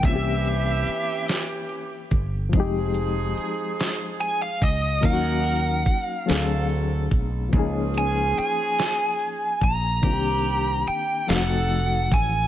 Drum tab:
HH |xxxxxx|xxxxxx|xxxxxx|xxxxxx|
SD |---o--|---o--|---o--|---o--|
BD |o----o|o----o|o-o--o|o----o|

HH |xxxxxx|
SD |---o--|
BD |o----o|